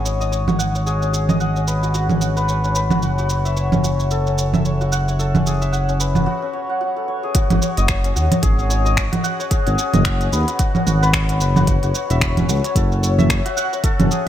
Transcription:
Already playing: analog synth bass G#1, santur C#4 F#4 G#4 B4 D#5 F#5
0.05 santur C#5, shaker
0.20 santur D#5, shaker
0.32 santur C#5, shaker
0.47 santur F#4, low conga, shaker
0.59 santur F#5, shaker
0.75 santur C#5, shaker
0.86 santur G#4, shaker
1.02 santur C#4, shaker
1.13 santur G#4, shaker
1.29 santur D#5, low conga, shaker
1.40 santur F#5, shaker
1.56 santur C#4, shaker
1.67 santur B4, shaker
1.82 santur F#4, shaker
1.94 santur F#4, shaker
2.09 santur C#4, low conga, shaker
2.21 santur F#5, shaker
2.36 santur B4, shaker
2.48 santur C#5, shaker
2.64 santur C#4, shaker
2.75 santur B4, shaker
2.90 santur F#4, low conga, shaker
3.02 analog synth bass F#1, santur F#4, shaker
3.18 santur F#4, shaker
3.29 santur C#5, shaker
3.45 santur E5, shaker
3.57 santur C#5, shaker
3.72 santur C#4, low conga, shaker
3.84 santur F#4, shaker
3.99 santur C#5, shaker
4.11 santur A4, shaker
4.27 santur C#4, shaker
4.38 santur C#5, shaker
4.54 santur E5, low conga, shaker
4.65 santur C#5, shaker
4.81 santur F#4, shaker
4.92 santur F#5, shaker
5.08 santur C#5, shaker
5.19 santur A4, shaker
5.35 santur C#4, low conga, shaker
5.46 santur G#4, shaker
5.61 santur E5, shaker
5.72 santur F#5, shaker
5.89 santur C#4, shaker
6.00 santur B4, shaker
6.15 santur F#4, low conga, shaker
6.26 santur F#4
6.42 santur C#4
6.53 santur C#5
6.70 santur F#5
6.81 santur F#4
6.96 santur A4
7.08 santur C#5
7.23 santur G#4
7.35 santur F#4, kick, closed hi-hat, shaker
7.50 analog synth bass G#1, santur F#4, closed hi-hat, low conga, shaker
7.62 santur C#5, shaker
7.77 analog synth bass F#1, santur D#5, closed hi-hat, shaker
7.88 santur C#5, finger snap, kick, closed hi-hat, shaker
8.04 santur C#4, closed hi-hat, shaker
8.16 analog synth bass D#2, santur F#4, shaker
8.31 santur C#5, closed hi-hat, low conga, shaker
8.42 analog synth bass G#1, santur G#4, kick, closed hi-hat, shaker
8.58 santur C#4, shaker
8.70 santur C#5, shaker
8.85 santur D#5, shaker
8.97 santur C#5, finger snap, kick, closed hi-hat, shaker
9.12 santur F#4, closed hi-hat, low conga, shaker
9.24 santur F#5, shaker
9.39 santur C#5, shaker
9.50 santur G#4, kick, closed hi-hat, shaker
9.66 analog synth bass G#1, santur C#4, closed hi-hat, shaker
9.78 santur G#4, shaker
9.93 analog synth bass F#1, santur D#5, closed hi-hat, low conga, shaker
10.05 finger snap, kick, closed hi-hat, shaker
10.21 santur C#4, closed hi-hat, shaker
10.32 analog synth bass D#2, santur B4, shaker
10.48 santur F#4, closed hi-hat, shaker
10.59 santur F#4, kick, closed hi-hat, shaker
10.75 santur C#4, low conga, shaker
10.86 analog synth bass G#1, santur F#5, shaker
11.02 santur B4, shaker
11.13 santur C#5, finger snap, kick, closed hi-hat, shaker
11.29 santur C#4, closed hi-hat, shaker
11.41 analog synth bass F#1, santur B4, shaker
11.56 santur F#4, low conga, shaker
11.67 santur F#4, kick, closed hi-hat, shaker
11.83 analog synth bass F#1, santur F#4, closed hi-hat, shaker
11.95 santur C#5, shaker
12.10 analog synth bass E1, santur E5, closed hi-hat, shaker
12.21 santur C#5, finger snap, kick, closed hi-hat, shaker
12.37 santur C#4, closed hi-hat, low conga, shaker
12.48 analog synth bass C#2, santur F#4, shaker
12.64 santur C#5, closed hi-hat, shaker
12.76 analog synth bass F#1, santur A4, kick, closed hi-hat, shaker
12.92 santur C#4, shaker
13.03 santur C#5, shaker
13.18 santur E5, low conga, shaker
13.30 finger snap, kick, closed hi-hat, shaker
13.45 santur F#4, closed hi-hat, shaker
13.57 santur F#5, shaker
13.73 santur C#5, shaker
13.84 santur A4, kick, closed hi-hat, shaker
14.00 analog synth bass F#1, santur C#4, closed hi-hat, low conga, shaker
14.11 santur G#4, shaker

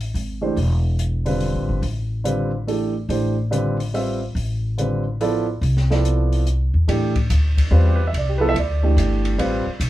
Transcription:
Already playing: upright bass A1
0.01 open hi-hat
0.14 upright bass G#1, open hi-hat
0.41 grand piano E3 A3 D4 G4 C5
0.57 upright bass E1, open hi-hat
0.99 closed hi-hat
1.25 grand piano D3 G3 C4 F4 B4, open hi-hat
1.41 open hi-hat
1.55 upright bass A1
1.69 upright bass G1
1.82 upright bass A1, open hi-hat
2.24 grand piano D3 G3 C4 F4 B4, closed hi-hat
2.67 grand piano E3 A3 D4 G4 A4, open hi-hat
3.09 upright bass A1, grand piano E3 A3 D4 G4 C5, open hi-hat
3.51 grand piano D3 G3 C4 F4 B4, closed hi-hat
3.80 open hi-hat
3.94 grand piano G3 C4 F4 B4 E5, open hi-hat
4.35 upright bass A1, open hi-hat
4.78 grand piano D3 G3 C4 F4 B4, closed hi-hat
5.21 grand piano F3 B3 E4 A4 D5, open hi-hat
5.61 upright bass C2, open hi-hat
5.77 snare
5.90 grand piano F3 B3 E4 A4 D5, snare
6.05 closed hi-hat
6.33 open hi-hat
6.47 closed hi-hat
6.74 upright bass E2
6.87 upright bass A2, grand piano E3 A3 D4 G4, ride
7.15 kick, ride
7.30 upright bass D2, hi-hat pedal, ride
7.58 kick, ride
7.71 upright bass E2, grand piano G3 C4 F4 B4
7.86 grand piano G4
7.96 grand piano B4
8.07 grand piano E5
8.13 upright bass C2, ride
8.18 grand piano D5
8.29 grand piano G4
8.38 grand piano F3 B3 E4 A4 B4
8.49 grand piano E5
8.54 upright bass D2, ride
8.59 grand piano D5
8.83 grand piano E3 A3 D4 G4
8.97 upright bass G1, hi-hat pedal, ride
9.25 ride
9.38 upright bass A1, grand piano G3 C4 F4 B4, ride
9.66 muted upright bass stroke
9.80 upright bass B1, hi-hat pedal, ride

